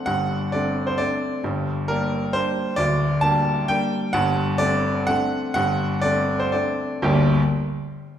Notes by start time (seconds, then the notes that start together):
0.06 G1 G2 F#5
0.52 A3 C4 D4 D5
0.87 C5
0.98 A3 C4 D4 D5
1.44 G1 G2
1.88 G3 A#3 D4 A#4
2.33 G3 A#3 D4 C5
2.76 D1 D2 D5
3.21 G3 A#3 D4 A5
3.68 G3 A#3 D4 G5
4.13 G1 G2 F#5
4.58 A3 C4 D4 D5
5.07 A3 C4 D4 F#5
5.54 G1 G2 F#5
6.01 A3 C4 D4 D5
6.40 C5
6.52 A3 C4 D4 D5
7.02 G1 D2 G3 A#3 D4 G4 G5